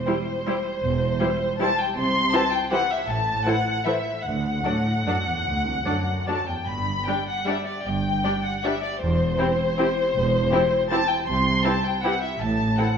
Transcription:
Already playing: violin section C5
0.06 viola section G3 E4, violin section G4 C5
0.46 viola section G3 E4, violin section G4 C5
0.83 double bass section E1, cello section E2
1.21 viola section G3 E4, violin section G4 C5
1.60 viola section G3 E4, violin section G4 C5 A5
1.80 violin section G5
1.97 double bass section C2, cello section C3, violin section C6
2.33 viola section E3 E4, violin section G4 C5 A5
2.53 violin section G5
2.72 viola section E3 E4, violin section G4 C5 F#5
2.91 violin section E5
3.08 double bass section A1, cello section A2, violin section A5
3.46 viola section E3 E4, violin section A4 C5 F#5
3.86 viola section E3 E4, violin section A4 C5 E5
4.24 cello section D2, double bass section D2, violin section F#5
4.64 cello section A2, viola section F#3 D4, violin section A4 D5
5.06 cello section F#2, viola section F#3 D4, violin section A4 D5
5.27 cello section E2
5.46 cello section D2, double bass section D2
5.66 cello section C2
5.85 cello section F#2, viola section F#3 D4, violin section A4 D5
6.28 viola section F#3 D4, violin section A4 D5 A5
6.48 cello section E2, violin section G5
6.68 double bass section G1, cello section G2, violin section B5
7.07 viola section G3 D4, violin section G4 D5 G5
7.28 violin section F#5
7.46 viola section G3 D4, violin section G4 D5 E5
7.67 violin section D5
7.85 double bass section G1, cello section G2, violin section G5
8.24 viola section G3 D4, violin section G4 D5
8.45 violin section F#5
8.64 viola section G3 D4, violin section G4 D5 E5
8.84 violin section D5
9.01 double bass section E1, cello section E2, violin section C5
9.38 viola section C4 E4, violin section G4 C5
9.78 viola section C4 E4, violin section G4 C5
10.15 double bass section E1, cello section E2
10.52 viola section C4 E4, violin section G4 C5
10.90 viola section C4 E4, violin section G4 C5 A5
11.10 violin section G5
11.27 double bass section C2, cello section C3, violin section C6
11.64 viola section C4 E4, violin section G4 B4 A5
11.85 violin section G5
12.04 viola section C4 E4, violin section G4 B4 F#5
12.22 violin section E5
12.40 double bass section A1, cello section A2, violin section A5
12.78 viola section C4 E4, violin section A4 F#5

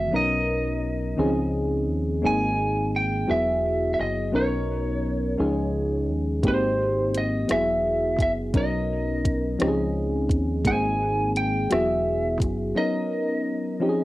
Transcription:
Already playing: fm electric piano D#3 E3 G#3 B3 F#4, lead electric guitar E5
0.11 fingered electric bass B1, fm electric piano F#3 B3 C#4 D#4 A#4
0.16 lead electric guitar D#5
1.17 fingered electric bass C#2, fm electric piano D#3 C4 C#4 D#4 G#4
1.23 fm electric piano F3
1.90 fingered electric bass D#2
2.22 fingered electric bass G#1, fm electric piano G#3 A#3 C4 D#4 G#4
2.26 lead electric guitar G#5
2.96 lead electric guitar G5
3.27 fingered electric bass E1, fm electric piano F#3 B3 E4 F#4 G#4, lead electric guitar E5
3.94 lead electric guitar E5
4.00 fingered electric bass F#1, lead electric guitar D#5
4.32 fingered electric bass B1, fm electric piano F#3 B3 C#4 D#4 A#4, lead electric guitar C#5
5.38 fingered electric bass C#2, fm electric piano F3 G#3 C#4 D#4 G#4
6.10 fingered electric bass D#2
6.43 fingered electric bass G#1, fm electric piano G#3 A#3 C4 D#4 G4, kick, closed hi-hat
6.48 lead electric guitar C5
7.15 lead electric guitar D#5, closed hi-hat
7.48 fingered electric bass E1, fm electric piano F#3 B3 E4 F#4 G#4, cross-stick, closed hi-hat
7.52 lead electric guitar E5
8.19 fingered electric bass F#1, lead electric guitar E5, kick, closed hi-hat
8.53 fingered electric bass B1, fm electric piano F#3 B3 C#4 D#4 A#4, kick, closed hi-hat
8.57 lead electric guitar D#5
9.25 kick, closed hi-hat
9.59 fingered electric bass C#2, fm electric piano F3 C4 C#4 D#4 G4, cross-stick, closed hi-hat
9.68 fm electric piano G#4
10.29 fingered electric bass D#2, kick, closed hi-hat
10.65 fingered electric bass G#1, fm electric piano G#3 A#3 B3 D#4 G#4, lead electric guitar G#5, kick, closed hi-hat
10.73 fm electric piano C4
11.36 lead electric guitar G5, closed hi-hat
11.70 fingered electric bass E1, fm electric piano F#3 B3 E4 F#4 G#4, lead electric guitar E5, cross-stick, closed hi-hat
12.40 fingered electric bass F#1, kick, closed hi-hat
12.75 fm electric piano F#3 B3 C#4 D#4 A#4, lead electric guitar D#5
13.80 fm electric piano F3 C4 C#4 D#4 G4
13.89 fm electric piano G#4

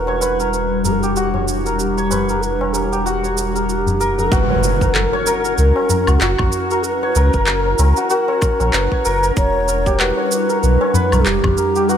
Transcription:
Already playing: sub bass E1, ambient pad G3 D4 E4, santur F#4 A#4, native american-style wooden flute B4
0.07 santur C#5, tabla na
0.21 santur B4, tabla na, cabasa
0.40 santur A#4, cabasa
0.53 native american-style wooden flute B4, cabasa
0.84 native american-style wooden flute G4, santur A#4, tabla ge, cabasa
0.92 native american-style wooden flute A#4
1.01 native american-style wooden flute G4, santur G4, cabasa
1.16 santur F#4, cabasa
1.34 santur C#5, tabla na, tabla ge
1.48 cabasa
1.66 santur A#4, tabla tin, cabasa
1.79 native american-style wooden flute G4, cabasa
1.98 santur C#5, cabasa
2.10 santur B4, tabla na, tabla tin, tabla ge, cabasa
2.29 santur A#4, cabasa
2.42 native american-style wooden flute B4, cabasa
2.61 tabla na
2.73 native american-style wooden flute G4, santur A#4, tabla na, cabasa
2.92 santur G4, cabasa
3.06 santur F#4, cabasa
3.24 santur C#5, tabla tin, cabasa
3.37 tabla tin, cabasa
3.56 santur A#4, cabasa
3.68 native american-style wooden flute G4, cabasa
3.86 tabla ge, cabasa
4.00 santur A#4, cabasa
4.18 santur A#4, tabla tin, tabla ge, cabasa
4.31 sub bass F#1, ambient pad C#4 E4 F#4, santur F#4, native american-style wooden flute B4, kick, impact, cabasa
4.49 santur C#5, tabla na, tabla tin
4.64 cabasa
4.81 santur A#4, kick, cabasa
4.94 native american-style wooden flute A#4, clap, cabasa
5.13 santur C#5, tabla tin
5.27 santur A#4, cabasa
5.45 santur A#4, cabasa
5.57 sub bass C#2, native american-style wooden flute A#4, cabasa
5.76 tabla na
5.90 santur A#4, tabla ge, cabasa
6.07 sub bass C#2, santur F#4, cabasa, low woodblock
6.20 sub bass F#1, native american-style wooden flute F#4, santur F#4, clap, cabasa
6.39 sub bass A#1, santur C#5, kick, tabla ge, low woodblock
6.52 cabasa
6.71 santur A#4, cabasa
6.83 native american-style wooden flute B4, cabasa
7.02 santur C#5, tabla na, tabla tin
7.15 sub bass C#2, santur A#4, cabasa
7.34 sub bass F#1, santur A#4, kick, cabasa
7.46 native american-style wooden flute A#4, clap, cabasa
7.66 tabla tin
7.79 sub bass C#2, santur A#4, tabla na, cabasa
7.97 santur F#4, cabasa
8.10 santur F#4, native american-style wooden flute A#4, cabasa
8.28 santur C#5, tabla na
8.42 kick, cabasa, low woodblock
8.60 sub bass A#1, santur A#4, tabla na, cabasa
8.73 sub bass F#1, native american-style wooden flute B4, clap, cabasa
8.92 santur C#5, kick
9.05 sub bass F#1, santur A#4, cabasa
9.23 santur A#4, cabasa
9.36 sub bass E1, ambient pad G3 D4, native american-style wooden flute C#5, kick, cabasa
9.55 tabla na, tabla tin
9.68 santur A#4, cabasa
9.86 santur G4, kick, cabasa
10.00 santur F#4, native american-style wooden flute B4, clap, cabasa
10.17 santur C#5, tabla tin
10.32 cabasa
10.49 santur A#4, cabasa
10.62 sub bass B1, native american-style wooden flute B4, cabasa
10.81 santur C#5, tabla na
10.94 santur B4, tabla ge, cabasa
11.12 sub bass B1, santur A#4, cabasa, low woodblock
11.26 sub bass E1, native american-style wooden flute G4, clap, cabasa
11.43 sub bass G1, kick, tabla ge, low woodblock
11.58 santur A#4, cabasa
11.76 santur G4, cabasa
11.89 santur F#4, native american-style wooden flute B4, cabasa

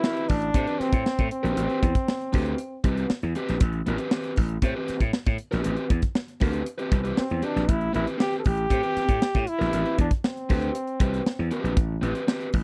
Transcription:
Already playing: trombone E4
0.03 overdriven electric guitar C4 G4 B4, snare
0.17 closed hi-hat
0.29 slap bass A1, trombone D4, kick, open hi-hat
0.42 closed hi-hat
0.54 slap bass A2, overdriven electric guitar C4 G4 C5, kick, closed hi-hat
0.67 overdriven electric guitar C4 G4 B4, closed hi-hat
0.79 trombone C4, muted slap bass stroke, snare, closed hi-hat
0.93 slap bass A2, kick, closed hi-hat
1.06 snare
1.18 slap bass A2, kick, closed hi-hat
1.31 trombone C4, closed hi-hat
1.43 slap bass A#1, overdriven electric guitar C4 G4 B4, closed hi-hat
1.56 slap bass A1, overdriven electric guitar C4 G4 B4, closed hi-hat
1.70 closed hi-hat
1.83 slap bass E2, kick, closed hi-hat
1.95 kick, closed hi-hat
2.08 snare
2.21 closed hi-hat
2.33 slap bass D2, overdriven electric guitar C4 G4 B4, kick, open hi-hat
2.46 closed hi-hat
2.58 closed hi-hat
2.84 slap bass C2, overdriven electric guitar C4 G4 B4, kick, closed hi-hat
2.97 closed hi-hat
3.10 muted slap bass stroke, snare
3.22 slap bass E2, closed hi-hat
3.35 overdriven electric guitar C4 G4 B4, closed hi-hat
3.48 slap bass A#1, snare, closed hi-hat
3.60 slap bass A1, kick, closed hi-hat
3.73 closed hi-hat
3.87 slap bass A1, overdriven electric guitar C4 G4 B4, closed hi-hat
3.98 closed hi-hat
4.11 overdriven electric guitar C4 G4 B4, snare
4.24 closed hi-hat
4.36 slap bass A1, kick, open hi-hat
4.49 closed hi-hat
4.62 slap bass A2, overdriven electric guitar C4 G4 C5, kick, closed hi-hat
4.76 overdriven electric guitar C4 G4 B4
4.88 muted slap bass stroke, snare, closed hi-hat
5.00 slap bass A2, kick, closed hi-hat
5.13 snare
5.26 slap bass A2, kick, closed hi-hat
5.38 closed hi-hat
5.51 slap bass A#1, overdriven electric guitar C4 G4 B4, snare, closed hi-hat
5.64 slap bass A1, overdriven electric guitar C4 G4 B4, closed hi-hat
5.77 closed hi-hat
5.90 slap bass E2, kick, closed hi-hat
6.02 kick, closed hi-hat
6.15 snare
6.28 closed hi-hat
6.40 slap bass D2, overdriven electric guitar C4 G4 B4, kick, open hi-hat
6.53 closed hi-hat
6.66 closed hi-hat
6.78 overdriven electric guitar C4 G4 B4, closed hi-hat
6.92 slap bass C2, kick, closed hi-hat
7.04 overdriven electric guitar C4 G4 B4, closed hi-hat
7.17 trombone C4, muted slap bass stroke, snare
7.30 slap bass E2, closed hi-hat
7.42 overdriven electric guitar C4 G4 B4, trombone D4, closed hi-hat
7.56 slap bass A#1, snare, closed hi-hat
7.69 slap bass A1, trombone E4, kick, closed hi-hat
7.81 closed hi-hat
7.93 slap bass A1, overdriven electric guitar C4 G4 B4, trombone E4, closed hi-hat
8.07 closed hi-hat
8.18 overdriven electric guitar C4 G4 B4, trombone G4, snare
8.33 closed hi-hat
8.39 trombone A4
8.45 slap bass A1, trombone G4, kick, open hi-hat
8.57 closed hi-hat
8.70 slap bass A2, overdriven electric guitar C4 G4 C5, kick, closed hi-hat
8.83 overdriven electric guitar C4 G4 B4, closed hi-hat
8.97 muted slap bass stroke, snare, closed hi-hat
9.08 slap bass A2, kick, closed hi-hat
9.22 snare
9.34 slap bass A2, kick, closed hi-hat
9.47 trombone E4, closed hi-hat
9.59 slap bass A#1, overdriven electric guitar C4 G4 B4, snare, closed hi-hat
9.72 slap bass A1, overdriven electric guitar C4 G4 B4, closed hi-hat
9.86 closed hi-hat
9.98 slap bass E2, trombone D4, kick, closed hi-hat
10.11 kick, closed hi-hat
10.24 trombone C4, snare
10.37 closed hi-hat
10.49 slap bass D2, overdriven electric guitar C4 G4 B4, kick, open hi-hat
10.62 closed hi-hat
10.75 closed hi-hat
10.87 closed hi-hat
11.00 slap bass C2, overdriven electric guitar C4 G4 B4, kick, closed hi-hat
11.14 closed hi-hat
11.26 snare
11.39 slap bass E2
11.51 overdriven electric guitar C4 G4 B4, closed hi-hat
11.64 slap bass A#1, closed hi-hat
11.77 slap bass A1, kick, closed hi-hat
12.02 slap bass A1, overdriven electric guitar C4 G4 B4, closed hi-hat
12.15 closed hi-hat
12.27 overdriven electric guitar C4 G4 B4, snare
12.41 closed hi-hat
12.53 slap bass A1, kick, open hi-hat

